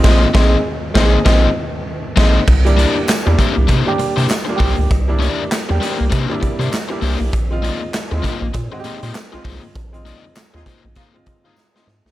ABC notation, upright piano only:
X:1
M:4/4
L:1/16
Q:"Swing 16ths" 1/4=99
K:Bblyd
V:1 name="Upright piano"
[_A,C_EF]2 [A,CE_A]2 z2 [A,CEA]2 [A,CEF]2 z4 [A,CE]2 | z [G,B,DE]3 z [G,B,DE]3 z [G,B,DG]3 z [G,B,DFG]3 | z [G,B,DE]3 z [G,B,DG]3 z [G,B,DE]3 z [G,B,DE]3 | z [_A,C_EF]3 z [A,CE=EF]3 z [A,C_E^FG]3 z [A,CE=F]3 |
z [_A,C_EF]3 z [A,CEF]3 z [A,CEF]3 z [A,CEF]3 |]